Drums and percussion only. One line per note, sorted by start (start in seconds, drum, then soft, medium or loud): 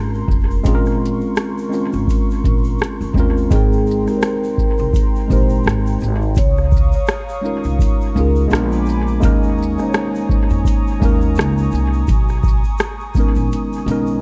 0.15 shaker medium
0.28 kick medium
0.28 shaker soft
0.51 shaker soft
0.64 kick loud
0.64 closed hi-hat medium
0.64 shaker medium
0.86 cross-stick soft
0.86 shaker soft
1.06 closed hi-hat medium
1.06 shaker soft
1.21 shaker medium
1.36 cross-stick loud
1.36 closed hi-hat medium
1.36 shaker medium
1.58 shaker soft
1.72 shaker soft
1.74 shaker soft
1.93 shaker soft
2.07 kick medium
2.07 closed hi-hat medium
2.07 shaker medium
2.31 shaker soft
2.44 kick medium
2.44 closed hi-hat soft
2.44 shaker soft
2.64 shaker soft
2.79 cross-stick loud
2.79 shaker medium
2.83 closed hi-hat medium
3.01 shaker medium
3.14 kick medium
3.14 shaker medium
3.37 shaker soft
3.51 kick loud
3.51 closed hi-hat medium
3.51 shaker medium
3.73 shaker soft
3.87 shaker soft
3.91 shaker medium
4.07 cross-stick soft
4.07 shaker medium
4.22 cross-stick loud
4.22 closed hi-hat medium
4.22 shaker medium
4.44 shaker medium
4.58 kick medium
4.58 shaker soft
4.78 shaker soft
4.93 kick medium
4.93 closed hi-hat medium
4.93 shaker medium
5.16 shaker soft
5.30 kick loud
5.30 shaker medium
5.30 shaker soft
5.49 shaker soft
5.64 cross-stick loud
5.64 shaker medium
5.69 closed hi-hat medium
5.86 shaker medium
6.00 shaker medium
6.03 shaker medium
6.22 shaker soft
6.35 kick loud
6.35 closed hi-hat medium
6.35 shaker medium
6.57 cross-stick soft
6.57 shaker soft
6.72 kick loud
6.72 shaker soft
6.77 shaker medium
6.92 shaker medium
7.07 cross-stick loud
7.07 closed hi-hat medium
7.07 shaker medium
7.29 shaker soft
7.45 shaker soft
7.64 shaker medium
7.79 kick medium
7.79 closed hi-hat medium
7.79 shaker medium
8.01 shaker soft
8.16 shaker medium
8.16 shaker soft
8.36 shaker soft
8.50 cross-stick loud
8.50 shaker medium
8.55 closed hi-hat medium
8.72 shaker medium
8.86 shaker medium
8.89 shaker medium
9.08 shaker soft
9.22 kick loud
9.22 closed hi-hat medium
9.22 shaker medium
9.43 shaker soft
9.58 shaker soft
9.63 shaker medium
9.78 cross-stick soft
9.78 shaker medium
9.93 cross-stick loud
9.93 closed hi-hat medium
9.93 shaker medium
10.15 shaker soft
10.29 kick medium
10.29 shaker soft
10.50 shaker soft
10.65 kick medium
10.65 closed hi-hat medium
10.65 shaker medium
10.87 shaker soft
11.01 kick loud
11.01 shaker medium
11.01 shaker soft
11.21 shaker soft
11.35 cross-stick loud
11.35 shaker medium
11.41 closed hi-hat medium
11.58 shaker medium
11.71 shaker medium
11.74 shaker medium
11.93 shaker soft
12.07 kick loud
12.07 closed hi-hat medium
12.07 shaker medium
12.29 cross-stick soft
12.29 shaker soft
12.43 kick medium
12.43 shaker soft
12.48 shaker medium
12.64 shaker medium
12.78 cross-stick loud
12.78 closed hi-hat medium
12.78 shaker medium
13.00 shaker medium
13.14 kick medium
13.14 shaker medium
13.16 shaker soft
13.35 shaker soft
13.51 closed hi-hat medium
13.51 shaker medium
13.73 shaker medium
13.88 closed hi-hat soft
13.88 shaker soft
13.88 shaker medium
14.07 shaker soft